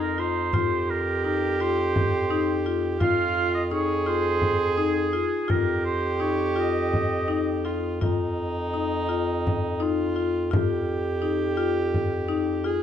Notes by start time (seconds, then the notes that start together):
Already playing: F2 D#4
0.02 A#4
0.18 F4 C5
0.53 F2 F4 G4, frame drum
0.90 A#4
1.24 D#4 A#4, frame drum
1.60 F4 C5
1.96 frame drum
2.30 D#4
2.66 F4
3.00 F2 F4 F5, frame drum
3.54 D#5
3.71 D#4 G#4 C#5, frame drum
4.06 F4 C5
4.42 frame drum
4.78 D#4 G#4
5.13 F4
5.48 F2 F4 G4 A#4, frame drum
5.85 C5, frame drum
6.20 D#4 C#5, frame drum
6.56 F4 D#5
6.94 frame drum
7.28 D#4, frame drum
7.65 F4
8.01 F2 D#4 F4, frame drum
8.74 D#4, frame drum
9.09 F4
9.47 frame drum
9.80 D#4 F4
10.16 F4
10.51 F2 F4 G4, frame drum
11.22 D#4, frame drum
11.57 F4
11.94 frame drum
12.28 D#4
12.64 F4 G#4